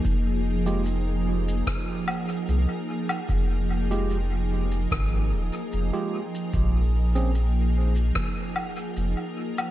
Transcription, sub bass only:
\new Staff \with { instrumentName = "Sub bass" } { \clef bass \time 4/4 \key f \minor \tempo 4 = 74 f,,2 r4 c,8 r8 | f,,2 aes,,8 ees,,8 f,,8 r8 | bes,,2 r4 f,,8 r8 | }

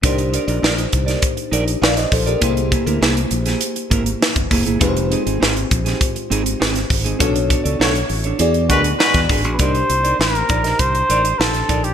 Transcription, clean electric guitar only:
\new Staff \with { instrumentName = "Clean electric guitar" } { \time 4/4 \key f \mixolydian \tempo 4 = 100 <ees' bes' d''>16 r16 <ees' bes' d''>16 <ees' bes' d''>16 <ees' bes' d''>16 r8 <ees' bes' d''>16 r8 <ees' bes' d''>16 r16 <ees' bes' d''>16 r8 <ees' bes' d''>16 | <bes e' aes'>16 r16 <bes e' aes'>16 <bes e' bes'>16 <bes e' aes'>16 r8 <bes e' aes'>16 r8 <bes e' bes'>16 r8. <bes e' aes'>16 <bes e' aes'>16 | <c' ees' aes'>16 r16 <c' ees' aes'>16 <c' ees' aes'>16 <c' ees' aes'>16 r8 <c' ees' aes'>16 r8 <c' ees' aes'>16 r16 <c' ees' aes'>16 r8 <c' ees' aes'>16 | <d' a' cis''>16 r16 <d' a' cis''>16 <d' a' d''>16 <d' a' cis''>16 r8 <d' a' cis''>16 r8 <d' fis' bes'>16 r8. <d' fis' gis'>16 <d' fis' gis'>16 |
<ees' bes' d''>16 r8 <ees' bes' d''>16 r8 <ees' bes' d''>16 <ees' bes' ees''>16 r8 <ees' bes' d''>16 r8. <ees' bes' d''>16 r16 | }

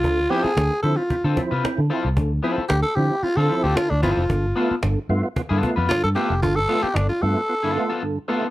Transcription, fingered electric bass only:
\new Staff \with { instrumentName = "Fingered electric bass" } { \clef bass \time 4/4 \key d \dorian \tempo 4 = 113 d,8 r8 d,16 r16 d16 r8 d16 r16 c16 r16 d16 r16 c,16 | d,8 r8 d,16 r16 d16 r8 d16 r16 d,16 r16 d,16 g,,16 f,,16 | g,,8 r8 g,,16 r16 g,16 r8 g,16 r16 f,16 r16 g,16 r16 f,,16 | g,,8 r8 g,,16 r16 g,16 r2 r16 | }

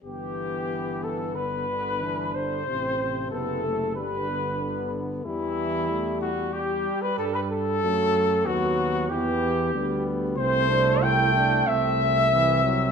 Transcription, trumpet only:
\new Staff \with { instrumentName = "Trumpet" } { \time 4/4 \key g \major \tempo 4 = 93 g'4. a'8 b'4. c''8~ | c''4 a'4 b'4. r8 | e'4. fis'8 g'8. b'16 a'16 b'16 a'8~ | a'4 fis'4 g'4. r8 |
c''4 g''4 e''2 | }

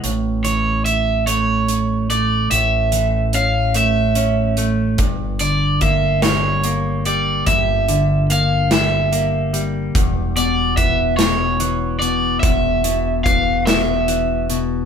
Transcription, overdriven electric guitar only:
\new Staff \with { instrumentName = "Overdriven electric guitar" } { \time 6/8 \key a \phrygian \tempo 4. = 48 r8 cis''8 e''8 cis''4 d''8 | e''4 f''8 e''4 r8 | r8 d''8 e''8 cis''4 d''8 | e''4 f''8 e''4 r8 |
r8 d''8 e''8 cis''4 d''8 | e''4 f''8 e''4 r8 | }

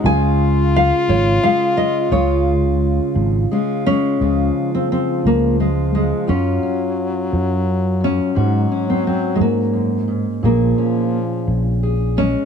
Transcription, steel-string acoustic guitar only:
\new Staff \with { instrumentName = "Steel-string acoustic guitar" } { \clef bass \time 6/8 \key des \major \tempo 4. = 58 << { <aes f'>2 <aes des' f'>8 aes8 | f'2 <aes des' f'>8 aes8 | f'2 f'8 aes8 | f'8 des'2~ des'8 |
ges'8 des'2~ des'8 | aes'8 des'4. aes'8 aes8 | } \\ { des2. | des2. | des2. | ges,2 r8 ges,8 |
aes,4. r8 ges,8 aes,8 | bes,2. | } >> }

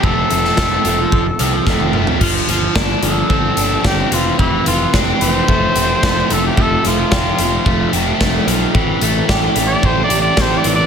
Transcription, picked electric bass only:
\new Staff \with { instrumentName = "Picked electric bass" } { \clef bass \time 4/4 \key f \lydian \tempo 4 = 110 f,,8 f,,8 f,,8 f,,8 f,,8 c,8 f,,4 | g,,8 g,,8 g,,8 g,,8 g,,8 g,,8 g,,8 f,,8 | f,,8 f,,8 f,,8 f,,8 f,,8 f,,8 f,,8 f,,8 | f,,8 f,,8 f,,8 f,,8 f,,8 f,,8 f,,8 b,,8 |
a,,8 a,,8 a,,8 a,,8 a,,8 a,,8 a,,8 a,,8 | }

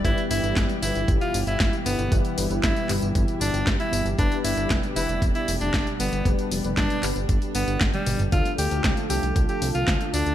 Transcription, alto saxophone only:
\new Staff \with { instrumentName = "Alto saxophone" } { \time 4/4 \key e \phrygian \tempo 4 = 116 e'16 r16 e'8. r16 e'8 r16 f'16 r16 e'8 r16 b8 | r4 e'8 r4 d'8 r16 e'8 r16 | d'16 r16 e'8. r16 e'8 r16 e'16 r16 d'8 r16 b8 | r4 d'8 r4 b8 r16 g8 r16 |
f'16 r16 g'8. r16 g'8 r16 g'16 r16 f'8 r16 d'8 | }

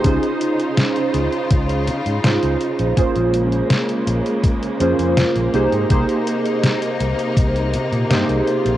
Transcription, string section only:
\new Staff \with { instrumentName = "String section" } { \time 4/4 \key aes \major \tempo 4 = 82 << { <ees' f' c''>1 | <des aes bes>2.~ <des aes bes>8 ees'8~ | ees'2.~ ees'8 f'8 | } \\ { des1 | r2. r8 c8~ | c1 | } >> }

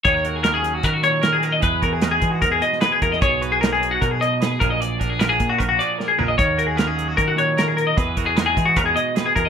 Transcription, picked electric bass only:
\new Staff \with { instrumentName = "Picked electric bass" } { \clef bass \time 4/4 \key dis \phrygian \tempo 4 = 152 dis,2 dis2 | e,8 e,4 e8 e,8 r4 e,8 | b,,2 b,4. ais,,8~ | ais,,8 ais,,4 ais,8 ais,,8 r4 ais,,8 |
dis,2 dis2 | e,8 e,4 e8 e,8 r4 e,8 | }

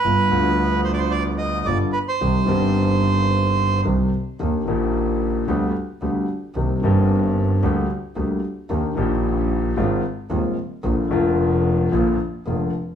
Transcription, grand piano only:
\new Staff \with { instrumentName = "Grand piano" } { \clef bass \time 4/4 \key c \minor \tempo 4 = 111 <g,, g, d g b f'>8 <d, d g b f'>2~ <d, d g b f'>8 <g,, g, d g b f'>8 r8 | <c, c ees g c' g'>8 <g,, g, ees g c' g'>2~ <g,, g, ees g c' g'>8 <c, c ees g c' g'>8 r8 | \key ees \major <ees, ees bes d' g'>8 <bes,, bes, ees bes d' g'>4. <d, d g b g'>8 r8 <d, d g b g'>8 r8 | <c, c ees bes c' g'>8 <g,, g, ees bes c' g'>4. <d, d g bes g'>8 r8 <d, d g bes g'>8 r8 |
<ees, ees bes d' g'>8 <bes,, bes, ees bes d' g'>4. <aes,, aes, ees aes c' f'>8 r8 <ees,, ees, ees aes c' f'>8 r8 | <bes,, bes, d f bes f'>8 <f,, f, d f bes f'>4. <bes,, bes, d f bes f'>8 r8 <f,, f, d f bes f'>8 r8 | }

